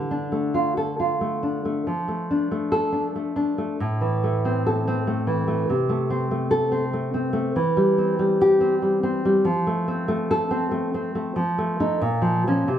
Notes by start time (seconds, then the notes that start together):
Already playing: D3
0.11 D4
0.32 A3
0.54 F4
0.77 A4
1.00 F4
1.21 A3
1.43 D4
1.65 A3
1.87 F3
2.08 A3
2.31 D4
2.51 A3
2.72 A4
2.92 D4
3.15 A3
3.36 D4
3.58 A3
3.80 A2
4.01 E3
4.24 A3
4.45 C4
4.66 A4
4.88 C4
5.07 A3
5.27 E3
5.48 A3
5.70 C3
5.89 A3
6.10 C4
6.31 A3
6.51 A4
6.72 C4
6.93 A3
7.14 C4
7.33 A3
7.56 E3
7.77 G3
7.98 C4
8.19 G3
8.41 G4
8.61 C4
8.82 G3
9.03 C4
9.25 G3
9.45 F3
9.67 A3
9.88 C4
10.08 A3
10.31 A4
10.51 C4
10.71 A3
10.94 C4
11.15 A3
11.36 F3
11.58 A3
11.80 A3 D#4
12.01 A#2
12.22 F3
12.47 F3 C#4
12.68 C3